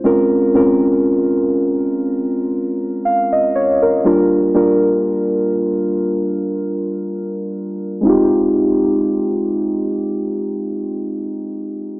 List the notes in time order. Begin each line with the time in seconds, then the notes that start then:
0.04 G#3 C4 C#4 F4 A#4
0.54 G#3 C4 C#4 F4 A#4
3.05 F5
3.32 D#5
3.55 C#5
3.82 A#4
4.04 G3 A#3 D4 F4 A#4
4.54 G3 A#3 D4 F4 A#4
8.01 G#3 C4
8.05 D#4 F4
8.09 G4